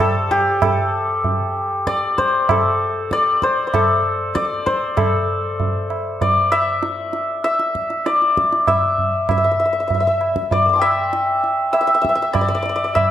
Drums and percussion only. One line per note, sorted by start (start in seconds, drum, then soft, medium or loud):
0.31 tabla ge soft
0.62 tabla na medium
0.62 tabla ge medium
1.24 tabla tin medium
1.24 tabla ge medium
1.87 tabla ke medium
2.18 tabla ke medium
2.49 tabla na medium
2.49 tabla ge medium
3.11 tabla ke medium
3.42 tabla ke medium
3.74 tabla na medium
3.74 tabla ge medium
4.36 tabla ke medium
4.67 tabla ke medium
4.97 tabla na medium
4.97 tabla ge medium
5.60 tabla tin medium
5.60 tabla ge medium
5.90 tabla na medium
6.21 tabla tin medium
6.21 tabla ge medium
6.52 tabla na medium
6.83 tabla te medium
7.13 tabla te medium
7.44 tabla te medium
7.59 tabla te medium
7.75 tabla ke medium
7.90 tabla te medium
8.06 tabla te medium
8.22 tabla te medium
8.37 tabla ke medium
8.53 tabla te medium
8.67 tabla na medium
8.67 tabla ge medium
8.98 tabla ge soft
9.29 tabla na medium
9.29 tabla ge medium
9.90 tabla tin medium
9.90 tabla ge medium
10.21 tabla na medium
10.36 tabla ke medium
10.51 tabla tin medium
10.51 tabla ge medium
10.82 tabla na medium
11.13 tabla te medium
11.44 tabla te medium
11.74 tabla na medium
12.05 tabla ke medium
12.35 tabla na medium
12.35 tabla ge medium
12.66 tabla te medium
12.96 tabla na medium
12.96 tabla ge medium